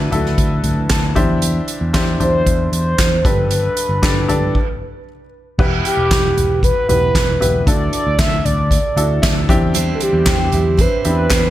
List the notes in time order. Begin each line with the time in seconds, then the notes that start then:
Already playing: D3 D4 E4 F#4 A4 B4
0.11 D2 D4 E4 F#4 A4, closed hi-hat, floor tom
0.25 snare
0.38 D2, kick, closed hi-hat
0.64 D2, closed hi-hat, floor tom
0.90 D2 A5, kick, snare, clap, closed hi-hat
1.15 E2 E3 D4 E4 G4 C5 E5, kick, closed hi-hat, floor tom
1.42 closed hi-hat
1.68 closed hi-hat
1.81 E2
1.93 E2 D4 E4 G4 C5, kick, snare, clap, closed hi-hat
2.20 E2 D4 E4 G4 C5, closed hi-hat, floor tom
2.46 E2, kick, closed hi-hat
2.72 E2 C5, closed hi-hat
2.99 E2, kick, snare, clap, closed hi-hat
3.24 G1 G2 D4 G4 A4 B4, kick, closed hi-hat, floor tom
3.51 B4, closed hi-hat
3.77 closed hi-hat
3.89 G1
4.02 G1 D4 G4 A4 D5, kick, snare, clap, closed hi-hat
4.28 G1 D4 G4 A4 D5, closed hi-hat, floor tom
4.55 kick, crash
5.58 E1 E3 B3 E4 G4 B4, kick, crash
5.85 G4, closed hi-hat
5.97 E1
6.11 E1, kick, snare, clap, closed hi-hat
6.37 E1, closed hi-hat, floor tom
6.63 B4, kick, closed hi-hat
6.89 E1 B3 E4 G4 B4, closed hi-hat, floor tom
7.15 E1, kick, snare, clap, closed hi-hat
7.40 E1 B3 E4 G4 B4, closed hi-hat, floor tom
7.66 D2 D3 D4 E4 F#4 A4 D5, kick, closed hi-hat
7.93 D5, closed hi-hat
8.07 D2
8.18 D2 E5, kick, snare, clap, closed hi-hat
8.45 D2 D5, closed hi-hat, floor tom
8.71 kick, closed hi-hat
8.96 D2 D4 E4 F#4 A4, closed hi-hat
9.22 D2 E5, kick, snare, clap, closed hi-hat
9.49 E2 E3 C4 D4 E4 G4 G5, kick, closed hi-hat, floor tom
9.74 D3 E3 G3 E4 C5, closed hi-hat
9.94 A4
10.00 G4, closed hi-hat
10.13 E2
10.26 E2 D3 G3 E4 C5, kick, snare, clap, closed hi-hat
10.52 E2 G3 E4 C5, closed hi-hat, floor tom
10.77 D3 G3 E4 B4 C5, kick, closed hi-hat
11.04 E2 C4 D4 E4 G4 B4, closed hi-hat
11.30 E2 D3 G3 E4 C5, kick, snare, clap, closed hi-hat